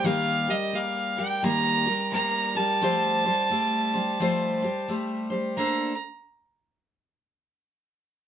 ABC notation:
X:1
M:4/4
L:1/8
Q:"Swing" 1/4=87
K:Eblyd
V:1 name="Fiddle"
f e f g b2 b a- | a6 z2 | b z6 z |]
V:2 name="Steel-string acoustic guitar"
[E,G,B,GB] [G,GB] [G,B,GB] [G,GB] [E,G,B,GB] [G,GB] [G,B,GB] [G,GB] | [F,G,A,Gc] [G,Gc] [G,A,Gc] [G,Gc] [F,G,A,Gc] [G,Gc] [G,A,Gc] [G,Gc] | [B,DAc] z6 z |]